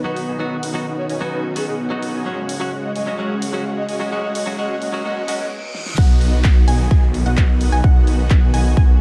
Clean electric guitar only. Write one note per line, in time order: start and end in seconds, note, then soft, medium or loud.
0.04 0.37 F#3 medium
0.04 0.37 B3 medium
0.04 0.37 D#4 medium
0.04 0.37 F#4 medium
0.39 0.56 F#3 medium
0.39 0.56 B3 medium
0.39 0.56 D#4 medium
0.39 0.56 F#4 loud
0.74 0.85 F#3 medium
0.74 0.85 B3 medium
0.74 0.85 D#4 medium
0.74 0.85 F#4 medium
1.21 1.53 F#3 medium
1.21 1.53 B3 medium
1.21 1.53 D#4 medium
1.21 1.54 F#4 medium
1.55 1.66 F#3 medium
1.55 1.66 B3 medium
1.55 1.66 D#4 medium
1.55 1.67 F#4 medium
1.90 2.23 F#3 medium
1.90 2.23 B3 medium
1.90 2.23 D#4 medium
1.90 2.23 F#4 medium
2.25 2.42 F#3 medium
2.25 2.42 G#3 medium
2.25 2.42 C#4 medium
2.25 2.42 F#4 medium
2.60 2.71 F#3 medium
2.60 2.71 G#3 medium
2.60 2.71 C#4 medium
2.60 2.71 F#4 medium
3.06 3.17 F#3 medium
3.06 3.17 G#3 medium
3.06 3.17 C#4 medium
3.06 3.17 F#4 medium
3.18 3.35 F#3 medium
3.18 3.35 G#3 medium
3.18 3.35 C#4 medium
3.18 3.35 F#4 medium
3.53 3.64 F#3 medium
3.53 3.64 G#3 medium
3.53 3.64 C#4 medium
3.53 3.64 F#4 medium
4.00 4.10 F#3 medium
4.00 4.10 G#3 medium
4.00 4.10 C#4 medium
4.00 4.10 F#4 medium
4.11 4.28 F#3 medium
4.11 4.28 G#3 medium
4.11 4.28 C#4 medium
4.11 4.28 F#4 loud
4.46 4.56 F#3 medium
4.46 4.56 G#3 medium
4.46 4.57 C#4 medium
4.46 4.57 F#4 loud
4.58 4.74 F#3 medium
4.58 4.75 G#3 medium
4.58 4.75 C#4 medium
4.58 4.75 F#4 loud
4.93 5.03 F#3 medium
4.93 5.03 G#3 medium
4.93 5.03 C#4 medium
4.93 5.03 F#4 loud
5.04 5.21 F#3 medium
5.04 5.21 G#3 medium
5.04 5.21 C#4 medium
5.04 5.21 F#4 loud
5.27 5.44 F#3 loud
5.27 5.44 G#3 medium
5.27 5.44 C#4 loud
5.27 5.45 F#4 loud